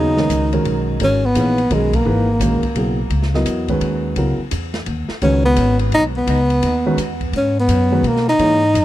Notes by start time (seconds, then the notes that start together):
Already playing: D#2 C#3 F#3 B3 D#4 G#4
0.17 D#3 G#3 C#4 F#4 A#4, snare
0.30 C#2, hi-hat pedal, ride
0.53 D#3 G#3 C#4 F#4 A#4, ride
0.64 B1, ride
1.00 G#1 D#3 G#3 C#4 F#4 A#4, ride
1.25 B3
1.35 A#1 E3 A#3 D#4 G#4 B4, hi-hat pedal, ride
1.58 ride
1.70 B1 D#3 G#3 C#4 F#4 A#4, ride
1.93 A#3, kick, ride
2.05 G#1 E3 A#3 D#4 G#4 B4
2.39 A#1 D#3 G#3 C#4 F#4 A#4, hi-hat pedal, ride
2.62 muted upright bass stroke, kick, ride
2.75 B1 C#3 F#3 B3 E4 G#4, ride
3.10 C#2, ride
3.23 snare
3.34 F#3 B3 E4 A#4 D#5, snare
3.45 E2, hi-hat pedal, ride
3.68 D#3 G#3 C#4 F#4 B4, kick, ride
3.80 D#2, ride
4.16 C#2 C#3 F#3 B3 E4 A#4, ride
4.38 muted upright bass stroke
4.51 E2, hi-hat pedal, ride
4.74 snare, ride
4.86 D#2, ride
5.09 muted upright bass stroke, snare
5.22 C#2 D#3 G#3 C#4 F#4 B4, ride
5.45 B3
5.56 G#1, hi-hat pedal, ride
5.79 ride
5.92 B1 D#4, ride
6.17 B3
6.27 C#2, ride
6.50 ride
6.62 D#2, ride
6.86 D#3 G#3 C#4 F#4 B4
6.97 E2, hi-hat pedal, ride
7.21 kick, ride
7.32 G#2, ride
7.37 C#4
7.60 B3
7.68 F#2, hi-hat pedal, ride
7.91 D#3 G#3 C#4 F#4 B4
8.03 B2 A#3, ride
8.16 snare
8.28 D#4, snare
8.39 G#2 E3 A#3 D#4 G#4 C#5, ride
8.74 F#2, hi-hat pedal, ride